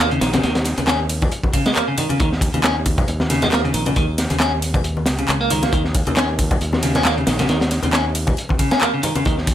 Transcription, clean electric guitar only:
0.11 0.19 C#3 medium
0.21 0.30 D#3 medium
0.34 0.41 C#3 loud
0.43 0.52 D#3 medium
0.78 0.82 C#3 medium
0.87 0.99 C#4 medium
1.53 1.65 C#3 loud
1.66 1.70 G#3 loud
1.76 1.85 A#3 medium
1.88 1.95 C#3 medium
1.98 2.07 D#3 medium
2.10 2.17 C#3 loud
2.20 2.29 D#3 medium
2.54 2.58 C#3 medium
2.64 2.76 C#4 medium
3.30 3.42 C#3 loud
3.42 3.47 G#3 loud
3.52 3.61 A#3 medium
3.64 3.72 C#3 medium
3.74 3.83 D#3 medium
3.87 3.94 C#3 loud
3.96 4.05 D#3 medium
4.30 4.35 C#3 medium
4.40 4.52 C#4 medium
5.19 5.27 C#3 medium
5.29 5.38 C#3 medium
5.41 5.50 A#3 loud
5.51 5.62 D#3 loud
5.63 5.72 A#3 medium
5.73 5.82 D#3 medium
6.07 6.11 C#3 medium
6.17 6.28 C#4 medium
6.83 6.95 C#3 loud
6.95 7.03 C#4 loud
7.05 7.14 A#3 medium
7.17 7.24 C#3 medium
7.27 7.36 D#3 medium
7.39 7.47 C#3 loud
7.49 7.58 D#3 medium
7.84 7.88 C#3 medium
7.93 8.05 C#4 medium
8.59 8.71 C#3 loud
8.71 8.79 C#4 loud
8.82 8.91 A#3 medium
8.94 9.01 C#3 medium
9.04 9.13 D#3 medium
9.16 9.23 C#3 loud
9.26 9.35 D#3 medium

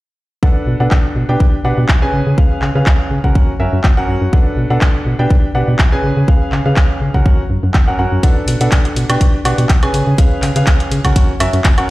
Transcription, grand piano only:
0.43 0.77 D4 medium
0.43 0.77 A4 medium
0.43 0.77 B4 medium
0.43 0.77 F#5 medium
0.80 1.26 D4 medium
0.80 1.26 A4 medium
0.80 1.26 B4 medium
0.80 1.26 F#5 medium
1.29 1.56 D4 medium
1.29 1.56 G4 medium
1.29 1.56 B4 medium
1.29 1.56 G5 medium
1.65 1.82 D4 medium
1.65 1.82 G4 medium
1.65 1.82 B4 medium
1.65 1.82 F#5 medium
2.02 2.35 C#4 medium
2.02 2.35 G#4 medium
2.02 2.35 B4 medium
2.02 2.35 G#5 loud
2.38 2.72 C#4 medium
2.38 2.72 G#4 medium
2.38 2.72 B4 medium
2.38 2.72 F5 medium
2.75 3.21 C#4 medium
2.75 3.21 G#4 medium
2.75 3.21 B4 medium
2.75 3.21 F5 medium
3.24 3.51 C#4 medium
3.24 3.51 F#4 medium
3.24 3.51 A#4 medium
3.24 3.51 F#5 medium
3.60 3.77 C#4 medium
3.60 3.77 F#4 medium
3.60 3.77 A#4 medium
3.60 3.77 E5 medium
3.97 4.30 C#4 medium
3.97 4.30 F#4 medium
3.97 4.30 A#4 medium
3.97 4.30 F#5 loud
4.33 4.67 D4 medium
4.33 4.67 A4 medium
4.33 4.67 B4 medium
4.33 4.67 F#5 medium
4.70 5.16 D4 medium
4.70 5.16 A4 medium
4.70 5.16 B4 medium
4.70 5.16 F#5 medium
5.19 5.46 D4 medium
5.19 5.46 G4 medium
5.19 5.46 B4 medium
5.19 5.46 G5 medium
5.55 5.72 D4 medium
5.55 5.72 G4 medium
5.55 5.72 B4 medium
5.55 5.72 F#5 medium
5.92 6.25 C#4 medium
5.92 6.25 G#4 medium
5.92 6.25 B4 medium
5.92 6.25 G#5 loud
6.28 6.62 C#4 medium
6.28 6.62 G#4 medium
6.28 6.62 B4 medium
6.28 6.62 F5 medium
6.65 7.11 C#4 medium
6.65 7.11 G#4 medium
6.65 7.11 B4 medium
6.65 7.11 F5 medium
7.14 7.41 C#4 medium
7.14 7.41 F#4 medium
7.14 7.41 A#4 medium
7.14 7.41 F#5 medium
7.87 7.97 C#4 medium
7.87 7.97 F#4 medium
7.87 7.97 A#4 medium
7.87 7.97 F#5 medium
7.99 8.21 C#4 medium
7.99 8.21 F#4 medium
7.99 8.21 A#4 medium
7.99 8.21 F#5 medium
8.23 8.58 D4 medium
8.23 8.58 A4 medium
8.23 8.58 B4 medium
8.23 8.58 F#5 medium
8.61 9.06 D4 medium
8.61 9.06 A4 medium
8.61 9.06 B4 medium
8.61 9.06 F#5 medium
9.09 9.36 D4 medium
9.09 9.36 G4 medium
9.09 9.36 B4 medium
9.09 9.36 G5 medium
9.45 9.63 D4 medium
9.45 9.63 G4 medium
9.45 9.63 B4 medium
9.45 9.63 F#5 medium
9.83 10.16 C#4 medium
9.83 10.16 G#4 medium
9.83 10.16 B4 medium
9.83 10.16 G#5 loud
10.18 10.53 C#4 medium
10.18 10.53 G#4 medium
10.18 10.53 B4 medium
10.18 10.53 F5 medium
10.56 11.01 C#4 medium
10.56 11.01 G#4 medium
10.56 11.01 B4 medium
10.56 11.01 F5 medium
11.05 11.31 C#4 medium
11.05 11.31 F#4 medium
11.05 11.31 A#4 medium
11.05 11.31 F#5 medium
11.40 11.58 C#4 medium
11.40 11.58 F#4 medium
11.40 11.58 A#4 medium
11.40 11.58 E5 medium
11.78 11.90 C#4 medium
11.78 11.90 F#4 medium
11.78 11.90 A#4 medium
11.78 11.90 F#5 loud

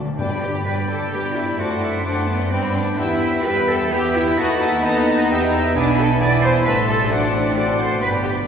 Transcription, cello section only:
0.18 0.41 D4 medium
0.42 0.66 G4 loud
0.66 0.74 B4 loud
0.90 1.13 A4 medium
1.13 1.36 G4 loud
1.35 1.59 E4 loud
1.58 1.82 F#4 loud
1.82 2.05 E4 loud
2.05 2.28 D4 loud
2.28 2.51 B3 loud
2.52 2.75 C4 loud
2.74 2.98 D4 loud
2.98 3.46 E4 loud
3.46 3.69 B4 loud
3.69 3.92 A4 loud
3.93 4.16 G4 loud
4.15 4.39 E4 loud
4.39 4.62 F#4 loud
4.61 4.84 E4 loud
4.84 5.76 D#4 loud
5.76 5.98 D4 loud
5.98 6.21 A4 loud
6.20 6.43 D5 loud
6.43 6.66 C5 loud
6.66 6.74 B4 loud
6.89 7.11 A4 loud
7.11 7.57 D4 loud
7.57 7.80 D5 loud
7.80 8.03 C5 loud
8.02 8.10 B4 loud
8.25 8.33 G4 loud

